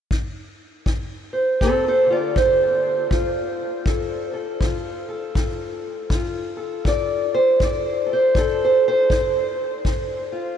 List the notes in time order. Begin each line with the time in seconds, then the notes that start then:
0.11 kick
0.86 D2, kick
1.33 C5
1.61 C4 A4, kick
1.88 A4 C5
2.06 D3
2.10 F4 D5
2.36 A2 C5, kick
3.11 D3 F4, kick
3.86 D2 A4, kick
4.33 A4
4.61 D3 F4, kick
5.09 A4
5.35 A2, kick
6.10 D3 F4, kick
6.57 A4
6.85 D2 D5, kick
7.34 C5
7.60 D3 D5, kick
8.06 A4
8.13 C5
8.35 A2 A4, kick
8.65 C5
8.88 C5
9.10 D3, kick
9.85 D2, kick
10.32 F4